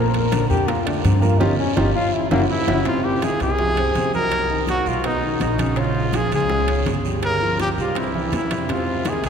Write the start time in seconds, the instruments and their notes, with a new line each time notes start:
Already playing: upright bass A#1, grand piano A#2 A#3 A#4, trombone A#4
0.14 high bongo, high conga, high timbale
0.32 grand piano D3 D4 D5, high bongo, high conga, high timbale, short guiro
0.50 upright bass F2, trombone G4, high bongo, high conga, short guiro
0.68 grand piano A#3 A#4 A#5, trombone F4, high bongo, high conga, high timbale, long guiro
0.86 grand piano D3 D4 D5, trombone A3, high conga, high timbale
1.04 upright bass G2, trombone C4, high bongo, low bongo, high conga, high timbale, short guiro
1.22 grand piano A#3 A#4 A#5, trombone F4, high bongo, high conga, short guiro
1.40 upright bass G1, grand piano C#4 F4 G4, trombone D#4, low bongo, high conga, high timbale, long guiro
1.59 trombone C#4
1.76 upright bass G1, grand piano C#4 F4 G4, trombone D#4, low bongo, high conga, high timbale, long guiro
1.95 trombone F4
2.13 trombone E4
2.31 upright bass F#1, trombone A#3, grand piano C#4 E4 F#4, low bongo, high conga, high timbale, long guiro
2.51 trombone G#2, trumpet E4
2.67 upright bass F#1, grand piano C#4 E4 F#4, low bongo, high conga, high timbale, long guiro
2.85 trombone G#2, grand piano C3 C4, trumpet F4, high bongo, high conga, high timbale, long guiro
3.04 trombone A#2, trumpet G4, high bongo, high conga
3.22 trombone C3, grand piano D#3 D#4, trumpet G#4, high bongo, high conga, high timbale, low timbale, short guiro
3.40 upright bass C2, trombone C3, trumpet G#4, high bongo, high timbale, short guiro
3.59 grand piano F3 F4, high bongo, high conga, long guiro
3.77 grand piano C4 C5, high bongo, high conga, high timbale
3.95 upright bass C2, high bongo, low bongo, high conga, high timbale, low timbale, short guiro
4.14 trombone D#3, grand piano F#3 F#4, trumpet A#4, high conga, short guiro
4.31 high bongo, high conga, high timbale, long guiro
4.50 grand piano D#3 D#4, high bongo, high conga
4.67 trombone A#2, trumpet F#4, high bongo, high conga, high timbale, low timbale, short guiro
4.86 upright bass B1, trombone G#2, grand piano F#3 F#4, trumpet F4, high bongo, high conga, short guiro
5.04 trombone F#2, grand piano B3 B4, trumpet D#4, high bongo, high conga, high timbale, long guiro
5.22 grand piano D#3 D#4, high bongo, high conga
5.40 upright bass A#1, trombone F#2, trumpet D#4, high bongo, low bongo, high conga, high timbale, low timbale, short guiro
5.58 grand piano C#3 C#4, high conga, high timbale, short guiro
5.76 trombone G#2, grand piano C#3 C#4, trumpet F4, high bongo, high timbale, long guiro
5.95 high bongo, high conga
6.13 trombone C#3, grand piano F3 F4, trumpet G#4, high bongo, high conga, high timbale, low timbale, short guiro
6.31 upright bass C#2, trombone C#3, trumpet G#4, high bongo, high timbale, short guiro
6.50 grand piano G#3 G#4, high bongo, high conga, long guiro
6.67 grand piano C#4 C#5, high bongo, high conga, high timbale
6.86 upright bass G1, high bongo, low bongo, high conga, high timbale, low timbale, short guiro
7.05 grand piano G3 G4, short guiro
7.23 trombone C#3, trumpet A#4, high bongo, high conga, high timbale, long guiro
7.41 grand piano F3 F4, high bongo, high conga
7.59 trombone A#2, trumpet G4, high bongo, high conga, high timbale, low timbale, short guiro
7.77 upright bass C2, trombone G#2, grand piano G3 G4, trumpet F4, high bongo, high conga, short guiro
7.95 trombone G2, grand piano C4 C5, trumpet E4, high bongo, high conga, high timbale, long guiro
8.15 grand piano E3 E4, high bongo, high conga
8.32 upright bass F2, trombone G2, trumpet E4, high bongo, low bongo, high conga, high timbale, low timbale, short guiro
8.51 grand piano C3 C4, high conga, high timbale, short guiro
8.69 trombone G#2, grand piano C3 C4, trumpet F4, high bongo, high conga, high timbale, long guiro
8.87 high bongo, high conga
9.05 trombone C3, grand piano D#3 D#4, trumpet G#4, high bongo, high conga, high timbale, low timbale, short guiro
9.23 upright bass C2, high bongo, high timbale, short guiro